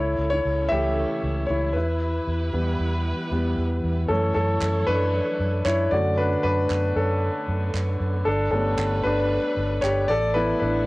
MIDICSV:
0, 0, Header, 1, 5, 480
1, 0, Start_track
1, 0, Key_signature, 2, "minor"
1, 0, Tempo, 521286
1, 1854, Time_signature, 4, 2, 24, 8
1, 10004, End_track
2, 0, Start_track
2, 0, Title_t, "Grand piano"
2, 0, Program_c, 0, 0
2, 0, Note_on_c, 0, 64, 77
2, 0, Note_on_c, 0, 73, 86
2, 130, Control_c, 0, 64, 127
2, 262, Note_off_c, 0, 73, 0
2, 276, Note_off_c, 0, 64, 0
2, 276, Note_on_c, 0, 73, 98
2, 304, Note_on_c, 0, 64, 62
2, 620, Note_off_c, 0, 73, 0
2, 633, Note_on_c, 0, 76, 101
2, 635, Note_off_c, 0, 64, 0
2, 648, Note_on_c, 0, 52, 53
2, 653, Note_on_c, 0, 57, 49
2, 659, Note_on_c, 0, 61, 58
2, 662, Note_on_c, 0, 67, 77
2, 1335, Note_off_c, 0, 52, 0
2, 1338, Note_off_c, 0, 57, 0
2, 1341, Note_off_c, 0, 61, 0
2, 1342, Note_off_c, 0, 67, 0
2, 1349, Note_on_c, 0, 73, 77
2, 1384, Note_on_c, 0, 64, 69
2, 1386, Note_off_c, 0, 76, 0
2, 1593, Note_on_c, 0, 71, 79
2, 1603, Note_off_c, 0, 64, 0
2, 1609, Note_off_c, 0, 73, 0
2, 1625, Control_c, 0, 64, 0
2, 1627, Note_on_c, 0, 64, 63
2, 1807, Control_c, 0, 64, 127
2, 2332, Note_on_c, 0, 52, 53
2, 2336, Note_on_c, 0, 55, 47
2, 2341, Note_on_c, 0, 59, 54
2, 3006, Note_off_c, 0, 71, 0
2, 3017, Note_off_c, 0, 52, 0
2, 3019, Note_off_c, 0, 55, 0
2, 3022, Note_off_c, 0, 59, 0
2, 3023, Note_off_c, 0, 64, 0
2, 3051, Note_on_c, 0, 52, 45
2, 3057, Note_on_c, 0, 55, 43
2, 3059, Note_on_c, 0, 59, 55
2, 3268, Note_off_c, 0, 52, 0
2, 3271, Note_off_c, 0, 55, 0
2, 3273, Note_off_c, 0, 59, 0
2, 3761, Note_on_c, 0, 69, 84
2, 3770, Note_on_c, 0, 52, 56
2, 3773, Note_on_c, 0, 57, 51
2, 3778, Note_on_c, 0, 61, 69
2, 3785, Control_c, 0, 64, 0
2, 3963, Control_c, 0, 64, 127
2, 3986, Note_off_c, 0, 69, 0
2, 4000, Note_on_c, 0, 69, 83
2, 4002, Note_off_c, 0, 61, 0
2, 4021, Note_on_c, 0, 61, 55
2, 4091, Note_off_c, 0, 52, 0
2, 4093, Note_off_c, 0, 57, 0
2, 4464, Note_off_c, 0, 61, 0
2, 4481, Note_on_c, 0, 71, 104
2, 4501, Note_off_c, 0, 69, 0
2, 4501, Note_on_c, 0, 62, 69
2, 5180, Note_off_c, 0, 62, 0
2, 5203, Note_on_c, 0, 73, 96
2, 5223, Note_on_c, 0, 64, 77
2, 5229, Note_off_c, 0, 71, 0
2, 5258, Note_off_c, 0, 73, 0
2, 5276, Note_off_c, 0, 64, 0
2, 5443, Note_on_c, 0, 74, 95
2, 5450, Note_on_c, 0, 50, 55
2, 5457, Note_on_c, 0, 57, 52
2, 5461, Note_on_c, 0, 61, 62
2, 5463, Note_on_c, 0, 66, 78
2, 5465, Control_c, 0, 64, 0
2, 5630, Control_c, 0, 64, 127
2, 5671, Note_off_c, 0, 74, 0
2, 5682, Note_off_c, 0, 66, 0
2, 5686, Note_on_c, 0, 71, 94
2, 5703, Note_on_c, 0, 62, 76
2, 5771, Note_off_c, 0, 50, 0
2, 5774, Note_off_c, 0, 57, 0
2, 5776, Note_off_c, 0, 61, 0
2, 5908, Note_off_c, 0, 71, 0
2, 5922, Note_off_c, 0, 62, 0
2, 5922, Note_on_c, 0, 71, 101
2, 5938, Note_on_c, 0, 62, 67
2, 6382, Note_off_c, 0, 62, 0
2, 6411, Note_on_c, 0, 69, 79
2, 6422, Note_off_c, 0, 71, 0
2, 6422, Note_on_c, 0, 61, 59
2, 7335, Note_off_c, 0, 69, 0
2, 7341, Note_off_c, 0, 61, 0
2, 7599, Note_on_c, 0, 69, 89
2, 7620, Note_on_c, 0, 62, 68
2, 7626, Control_c, 0, 64, 0
2, 7761, Control_c, 0, 64, 127
2, 7824, Note_off_c, 0, 69, 0
2, 7838, Note_on_c, 0, 69, 85
2, 7840, Note_off_c, 0, 62, 0
2, 7847, Note_on_c, 0, 55, 51
2, 7854, Note_on_c, 0, 57, 46
2, 7857, Note_on_c, 0, 59, 52
2, 7860, Note_on_c, 0, 61, 60
2, 8304, Note_off_c, 0, 61, 0
2, 8320, Note_on_c, 0, 71, 96
2, 8341, Note_off_c, 0, 69, 0
2, 8344, Note_on_c, 0, 62, 78
2, 8534, Note_off_c, 0, 55, 0
2, 8538, Note_off_c, 0, 57, 0
2, 8540, Note_off_c, 0, 59, 0
2, 9023, Note_off_c, 0, 62, 0
2, 9037, Note_on_c, 0, 73, 95
2, 9057, Note_on_c, 0, 67, 75
2, 9069, Note_off_c, 0, 71, 0
2, 9279, Note_off_c, 0, 67, 0
2, 9283, Note_on_c, 0, 74, 104
2, 9293, Note_off_c, 0, 73, 0
2, 9304, Note_on_c, 0, 69, 81
2, 9307, Control_c, 0, 64, 0
2, 9443, Control_c, 0, 64, 127
2, 9522, Note_on_c, 0, 71, 100
2, 9523, Note_off_c, 0, 69, 0
2, 9528, Note_on_c, 0, 52, 55
2, 9533, Note_on_c, 0, 57, 48
2, 9536, Note_off_c, 0, 74, 0
2, 9539, Note_on_c, 0, 59, 62
2, 9540, Note_on_c, 0, 64, 76
2, 9743, Note_off_c, 0, 71, 0
2, 9757, Note_on_c, 0, 71, 84
2, 9761, Note_off_c, 0, 64, 0
2, 9775, Note_on_c, 0, 62, 64
2, 10004, Note_off_c, 0, 52, 0
2, 10004, Note_off_c, 0, 57, 0
2, 10004, Note_off_c, 0, 59, 0
2, 10004, Note_off_c, 0, 62, 0
2, 10004, Note_off_c, 0, 71, 0
2, 10004, End_track
3, 0, Start_track
3, 0, Title_t, "String section"
3, 0, Program_c, 1, 48
3, 0, Note_on_c, 1, 49, 72
3, 0, Note_on_c, 1, 61, 69
3, 0, Note_on_c, 1, 64, 66
3, 0, Note_on_c, 1, 69, 75
3, 1600, Note_off_c, 1, 69, 0
3, 1601, Note_off_c, 1, 49, 0
3, 1601, Note_off_c, 1, 61, 0
3, 1624, Note_on_c, 1, 52, 66
3, 1624, Note_on_c, 1, 67, 60
3, 1626, Note_on_c, 1, 71, 80
3, 3738, Note_off_c, 1, 64, 0
3, 3757, Note_off_c, 1, 52, 0
3, 3757, Note_off_c, 1, 67, 0
3, 3758, Note_off_c, 1, 71, 0
3, 3776, Note_on_c, 1, 64, 67
3, 3777, Note_on_c, 1, 69, 81
3, 3777, Note_on_c, 1, 73, 68
3, 3778, Note_on_c, 1, 54, 73
3, 5438, Note_off_c, 1, 64, 0
3, 5438, Note_off_c, 1, 69, 0
3, 5438, Note_off_c, 1, 73, 0
3, 5439, Note_off_c, 1, 54, 0
3, 5459, Note_on_c, 1, 57, 67
3, 5459, Note_on_c, 1, 59, 59
3, 5465, Note_on_c, 1, 50, 79
3, 7594, Note_off_c, 1, 59, 0
3, 7595, Note_off_c, 1, 57, 0
3, 7600, Note_on_c, 1, 69, 69
3, 7601, Note_on_c, 1, 71, 89
3, 7603, Note_on_c, 1, 55, 82
3, 9263, Note_off_c, 1, 50, 0
3, 9270, Note_off_c, 1, 69, 0
3, 9271, Note_off_c, 1, 71, 0
3, 9272, Note_off_c, 1, 55, 0
3, 9290, Note_on_c, 1, 64, 80
3, 9292, Note_on_c, 1, 59, 64
3, 9293, Note_on_c, 1, 57, 75
3, 10004, Note_off_c, 1, 57, 0
3, 10004, Note_off_c, 1, 59, 0
3, 10004, Note_off_c, 1, 64, 0
3, 10004, End_track
4, 0, Start_track
4, 0, Title_t, "Fingered electric bass"
4, 0, Program_c, 2, 33
4, 0, Note_on_c, 2, 37, 99
4, 134, Note_off_c, 2, 37, 0
4, 170, Note_on_c, 2, 37, 93
4, 369, Note_off_c, 2, 37, 0
4, 417, Note_on_c, 2, 37, 90
4, 613, Note_off_c, 2, 37, 0
4, 660, Note_on_c, 2, 37, 78
4, 953, Note_off_c, 2, 37, 0
4, 1135, Note_on_c, 2, 37, 85
4, 1332, Note_off_c, 2, 37, 0
4, 1378, Note_on_c, 2, 37, 83
4, 1617, Note_off_c, 2, 37, 0
4, 1617, Note_on_c, 2, 40, 97
4, 2009, Note_off_c, 2, 40, 0
4, 2093, Note_on_c, 2, 40, 95
4, 2290, Note_off_c, 2, 40, 0
4, 2334, Note_on_c, 2, 40, 98
4, 2531, Note_off_c, 2, 40, 0
4, 2573, Note_on_c, 2, 40, 81
4, 2868, Note_off_c, 2, 40, 0
4, 3051, Note_on_c, 2, 40, 91
4, 3249, Note_off_c, 2, 40, 0
4, 3291, Note_on_c, 2, 40, 89
4, 3489, Note_off_c, 2, 40, 0
4, 3532, Note_on_c, 2, 40, 89
4, 3730, Note_off_c, 2, 40, 0
4, 3769, Note_on_c, 2, 42, 105
4, 3967, Note_off_c, 2, 42, 0
4, 4012, Note_on_c, 2, 42, 88
4, 4209, Note_off_c, 2, 42, 0
4, 4249, Note_on_c, 2, 42, 99
4, 4448, Note_off_c, 2, 42, 0
4, 4490, Note_on_c, 2, 42, 81
4, 4787, Note_off_c, 2, 42, 0
4, 4968, Note_on_c, 2, 42, 82
4, 5167, Note_off_c, 2, 42, 0
4, 5206, Note_on_c, 2, 42, 88
4, 5406, Note_off_c, 2, 42, 0
4, 5450, Note_on_c, 2, 42, 104
4, 5845, Note_off_c, 2, 42, 0
4, 5929, Note_on_c, 2, 42, 86
4, 6127, Note_off_c, 2, 42, 0
4, 6170, Note_on_c, 2, 42, 92
4, 6368, Note_off_c, 2, 42, 0
4, 6407, Note_on_c, 2, 42, 91
4, 6705, Note_off_c, 2, 42, 0
4, 6889, Note_on_c, 2, 42, 93
4, 7088, Note_off_c, 2, 42, 0
4, 7124, Note_on_c, 2, 42, 77
4, 7325, Note_off_c, 2, 42, 0
4, 7369, Note_on_c, 2, 42, 88
4, 7568, Note_off_c, 2, 42, 0
4, 7609, Note_on_c, 2, 31, 106
4, 7808, Note_off_c, 2, 31, 0
4, 7849, Note_on_c, 2, 31, 104
4, 8048, Note_off_c, 2, 31, 0
4, 8088, Note_on_c, 2, 31, 104
4, 8287, Note_off_c, 2, 31, 0
4, 8331, Note_on_c, 2, 31, 86
4, 8628, Note_off_c, 2, 31, 0
4, 8810, Note_on_c, 2, 31, 96
4, 9008, Note_off_c, 2, 31, 0
4, 9053, Note_on_c, 2, 31, 91
4, 9250, Note_off_c, 2, 31, 0
4, 9294, Note_on_c, 2, 33, 93
4, 9688, Note_off_c, 2, 33, 0
4, 9775, Note_on_c, 2, 33, 92
4, 9972, Note_off_c, 2, 33, 0
4, 10004, End_track
5, 0, Start_track
5, 0, Title_t, "Drums"
5, 4250, Note_on_c, 9, 39, 92
5, 4342, Note_off_c, 9, 39, 0
5, 5212, Note_on_c, 9, 39, 82
5, 5304, Note_off_c, 9, 39, 0
5, 6172, Note_on_c, 9, 39, 89
5, 6264, Note_off_c, 9, 39, 0
5, 7134, Note_on_c, 9, 39, 82
5, 7227, Note_off_c, 9, 39, 0
5, 8092, Note_on_c, 9, 39, 89
5, 8184, Note_off_c, 9, 39, 0
5, 9053, Note_on_c, 9, 39, 79
5, 9145, Note_off_c, 9, 39, 0
5, 10004, End_track
0, 0, End_of_file